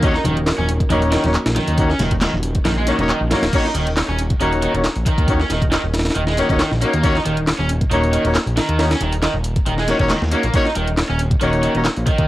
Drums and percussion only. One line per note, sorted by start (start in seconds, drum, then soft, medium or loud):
0.03 kick loud
0.03 closed hi-hat medium
0.03 closed hi-hat soft
0.14 snare medium
0.24 closed hi-hat medium
0.24 high conga medium
0.24 low conga medium
0.37 closed hi-hat soft
0.46 snare loud
0.46 clap loud
0.46 closed hi-hat soft
0.46 open hi-hat medium
0.59 high conga medium
0.69 closed hi-hat medium
0.80 kick loud
0.80 closed hi-hat soft
0.90 closed hi-hat medium
0.90 closed hi-hat soft
0.90 high conga medium
1.02 closed hi-hat soft
1.12 snare loud
1.12 closed hi-hat medium
1.24 snare soft
1.24 closed hi-hat soft
1.24 high conga medium
1.34 clap loud
1.34 closed hi-hat soft
1.34 closed hi-hat medium
1.46 snare loud
1.46 closed hi-hat medium
1.56 snare soft
1.56 closed hi-hat medium
1.56 high conga medium
1.68 closed hi-hat soft
1.68 closed hi-hat medium
1.78 kick loud
1.78 closed hi-hat soft
1.78 closed hi-hat medium
1.90 snare medium
1.99 snare medium
1.99 closed hi-hat medium
1.99 high conga medium
1.99 low conga medium
2.11 kick medium
2.11 closed hi-hat soft
2.21 snare loud
2.21 clap loud
2.21 closed hi-hat soft
2.21 closed hi-hat medium
2.33 high conga medium
2.43 closed hi-hat medium
2.55 kick loud
2.55 closed hi-hat soft
2.65 snare loud
2.65 closed hi-hat soft
2.65 open hi-hat medium
2.65 high conga medium
2.87 snare soft
2.87 closed hi-hat medium
2.98 closed hi-hat soft
2.98 high conga medium
3.09 clap loud
3.09 closed hi-hat soft
3.31 snare loud
3.31 closed hi-hat medium
3.31 open hi-hat medium
3.31 high conga medium
3.43 snare loud
3.43 closed hi-hat soft
3.43 open hi-hat medium
3.53 kick loud
3.53 closed hi-hat medium
3.53 closed hi-hat soft
3.53 crash loud
3.65 snare medium
3.75 closed hi-hat medium
3.87 closed hi-hat soft
3.97 snare loud
3.97 clap loud
3.97 closed hi-hat soft
3.97 open hi-hat medium
4.19 closed hi-hat medium
4.30 kick loud
4.30 closed hi-hat soft
4.40 closed hi-hat soft
4.40 closed hi-hat medium
4.53 closed hi-hat soft
4.62 closed hi-hat medium
4.75 closed hi-hat soft
4.84 snare loud
4.84 clap loud
4.84 closed hi-hat medium
4.84 closed hi-hat soft
4.96 closed hi-hat soft
5.06 kick loud
5.06 closed hi-hat medium
5.18 kick medium
5.18 closed hi-hat soft
5.28 kick loud
5.28 closed hi-hat medium
5.28 closed hi-hat soft
5.40 snare medium
5.50 snare medium
5.50 closed hi-hat medium
5.62 kick loud
5.62 closed hi-hat soft
5.72 snare loud
5.72 clap loud
5.72 closed hi-hat medium
5.72 closed hi-hat soft
5.94 snare medium
5.94 closed hi-hat medium
5.94 open hi-hat medium
5.99 snare medium
5.99 open hi-hat medium
6.05 snare medium
6.05 closed hi-hat soft
6.05 open hi-hat medium
6.10 snare medium
6.10 open hi-hat medium
6.15 closed hi-hat medium
6.15 closed hi-hat soft
6.27 snare medium
6.37 snare soft
6.37 closed hi-hat medium
6.49 kick medium
6.49 closed hi-hat soft
6.59 snare loud
6.59 clap loud
6.59 closed hi-hat medium
6.59 closed hi-hat soft
6.71 snare medium
6.81 closed hi-hat medium
6.93 closed hi-hat soft
7.03 kick loud
7.03 closed hi-hat medium
7.03 closed hi-hat soft
7.15 snare medium
7.25 closed hi-hat medium
7.37 closed hi-hat soft
7.47 snare loud
7.47 clap loud
7.47 closed hi-hat soft
7.47 open hi-hat medium
7.69 closed hi-hat medium
7.81 kick loud
7.81 closed hi-hat soft
7.91 closed hi-hat soft
7.91 closed hi-hat medium
8.04 closed hi-hat soft
8.13 closed hi-hat medium
8.25 closed hi-hat soft
8.35 snare loud
8.35 clap loud
8.35 closed hi-hat soft
8.35 closed hi-hat medium
8.47 closed hi-hat soft
8.57 snare loud
8.57 closed hi-hat medium
8.57 open hi-hat medium
8.69 closed hi-hat soft
8.79 snare loud
8.79 closed hi-hat soft
8.79 open hi-hat medium
8.91 snare loud
8.91 closed hi-hat medium
9.01 closed hi-hat medium
9.12 closed hi-hat medium
9.12 closed hi-hat soft
9.22 snare loud
9.22 clap loud
9.22 closed hi-hat medium
9.22 closed hi-hat soft
9.44 closed hi-hat medium
9.56 kick loud
9.56 closed hi-hat soft
9.66 closed hi-hat soft
9.66 closed hi-hat medium
9.78 snare medium
9.88 snare soft
9.88 closed hi-hat medium
9.99 kick loud
9.99 closed hi-hat soft
10.09 snare loud
10.09 clap loud
10.09 closed hi-hat soft
10.09 closed hi-hat medium
10.22 snare medium
10.32 closed hi-hat medium
10.43 closed hi-hat soft
10.54 kick loud
10.54 closed hi-hat medium
10.54 closed hi-hat soft
10.65 snare medium
10.75 closed hi-hat medium
10.87 closed hi-hat soft
10.97 snare loud
10.97 clap loud
10.97 closed hi-hat soft
10.97 open hi-hat medium
11.19 closed hi-hat medium
11.31 kick loud
11.31 closed hi-hat soft
11.41 closed hi-hat medium
11.41 closed hi-hat soft
11.53 closed hi-hat soft
11.63 closed hi-hat medium
11.75 closed hi-hat soft
11.85 snare loud
11.85 clap loud
11.85 closed hi-hat soft
11.85 closed hi-hat medium
11.97 closed hi-hat soft
12.07 kick loud
12.07 closed hi-hat medium
12.18 kick medium
12.18 closed hi-hat soft